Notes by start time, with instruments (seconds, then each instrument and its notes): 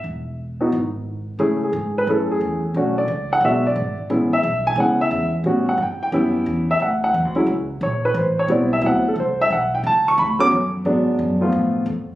0.04 upright bass E1
0.61 grand piano B3 D#4 E4 F#4
0.72 upright bass G#1
1.39 upright bass C#2, grand piano A3 C#4 E4 G#4
1.64 grand piano G#4
1.73 upright bass G#2
1.98 grand piano B4
2.07 upright bass F#2, grand piano A3 C#4 E4 G#4 A4
2.31 grand piano G#4
2.41 upright bass E2
2.74 upright bass B1, grand piano A3 C#4 D4 F#4
2.98 grand piano D5
3.08 upright bass C#2
3.33 grand piano F#5
3.41 upright bass B1, grand piano G#3 B3 F#4 E5
3.45 grand piano D4
3.67 grand piano D5
3.76 upright bass G#1
3.98 muted upright bass stroke
4.10 upright bass A1, grand piano G#3 B3 C#4 E4
4.33 grand piano E5
4.43 upright bass B1
4.67 grand piano G#5
4.76 upright bass C#2, grand piano G#3 B3 C#4 E4
4.80 grand piano F#5
5.01 grand piano E5
5.11 upright bass E2
5.44 upright bass A2, grand piano G3 B3 C#4 F#4
5.69 grand piano F#5
5.78 upright bass G2
5.82 grand piano G5
6.03 grand piano G5
6.12 upright bass F#2, grand piano B3 C#4 E4 G4
6.46 upright bass E2
6.71 grand piano E5
6.80 upright bass D2, grand piano F#5
7.04 grand piano F#5
7.14 upright bass E2
7.25 upright bass D2
7.35 upright bass C#2, grand piano F#3 G#3 C#4 E4
7.47 upright bass C#2
7.81 upright bass A#1, grand piano C#5
8.05 grand piano B4
8.14 upright bass A1, grand piano C5
8.39 grand piano C#5
8.48 upright bass B1, grand piano G3 B3 C4 E4 D5
8.73 grand piano E5
8.81 upright bass D2, grand piano F#3 B3 C4 E4
8.86 grand piano F#5
9.08 grand piano A4
9.16 upright bass C2
9.20 grand piano C5
9.41 grand piano E5
9.50 upright bass B1, grand piano F#5
9.75 grand piano G5
9.83 upright bass C#2, grand piano A5
10.08 grand piano C#6
10.18 upright bass D2, grand piano B5
10.39 grand piano F#3 A3 B3 C#4 D6
10.51 upright bass F#2
10.85 upright bass G#2, grand piano F#3 G#3 B3 D4
11.19 upright bass F#2
11.41 grand piano F3 A3 B3 F4
11.52 upright bass A2
11.86 upright bass F2